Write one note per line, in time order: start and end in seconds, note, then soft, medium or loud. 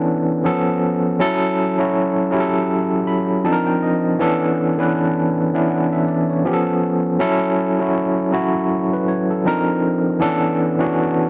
0.00 0.45 E3 loud
0.00 0.45 B3 loud
0.00 0.45 C#4 loud
0.00 0.46 D4 loud
0.00 0.45 A4 loud
0.00 0.45 B4 medium
0.44 1.06 F3 medium
0.44 1.07 B3 medium
0.44 1.07 C#4 medium
0.44 1.07 A4 loud
1.19 1.63 F#3 loud
1.19 1.63 C#4 medium
1.19 1.63 E4 loud
1.19 1.64 A4 loud
1.78 2.20 F#3 medium
1.78 2.21 C#4 medium
1.78 2.21 E4 medium
1.78 2.21 F#4 medium
2.31 3.44 F#3 medium
2.31 3.44 C#4 medium
2.31 3.44 E4 medium
2.31 2.40 G4 medium
2.40 3.45 A4 medium
3.07 3.42 B5 medium
3.44 4.07 F3 medium
3.44 4.07 C4 medium
3.44 4.07 D4 medium
3.44 4.07 D#4 medium
3.44 3.52 A4 medium
3.44 3.65 A5 medium
3.53 4.11 A#4 loud
3.67 3.81 G5 medium
3.83 4.17 D#5 medium
4.19 4.63 E3 loud
4.19 4.63 B3 loud
4.19 4.63 C#4 loud
4.19 4.64 D4 loud
4.19 4.64 A4 loud
4.78 5.32 E3 medium
4.78 5.32 B3 medium
4.78 5.33 C#4 medium
4.78 5.33 D4 medium
4.78 5.33 B4 loud
5.53 6.44 E3 medium
5.53 6.44 B3 medium
5.53 6.44 C#4 medium
5.53 6.44 D4 medium
5.53 6.45 E4 medium
5.71 5.91 F#5 medium
5.93 6.06 E5 medium
6.08 6.28 D5 medium
6.30 6.65 C#5 medium
6.45 7.07 F3 loud
6.45 7.07 B3 medium
6.45 7.08 C#4 medium
6.45 6.53 G4 medium
6.53 7.11 A4 loud
7.19 7.63 F#3 loud
7.19 7.63 C#4 loud
7.19 7.63 E4 loud
7.19 7.64 A4 loud
7.79 8.21 F#3 medium
7.79 8.21 C#4 medium
7.79 8.22 E4 medium
7.79 8.22 F#4 medium
8.32 9.44 F#3 medium
8.32 9.44 C#4 medium
8.32 9.45 E4 medium
8.32 9.45 F#4 medium
8.93 9.07 B4 medium
9.08 9.28 C#5 medium
9.31 9.65 A4 medium
9.45 10.07 F3 medium
9.45 10.07 C4 medium
9.45 10.07 D4 medium
9.45 10.08 D#4 medium
9.45 10.08 A#4 loud
10.19 10.63 E3 loud
10.19 10.63 B3 loud
10.19 10.63 C#4 loud
10.19 10.64 D4 loud
10.19 10.64 A4 loud
10.79 11.30 E3 medium
10.79 11.30 B3 medium
10.79 11.30 C#4 medium
10.79 11.30 D4 medium
10.79 11.30 F#4 loud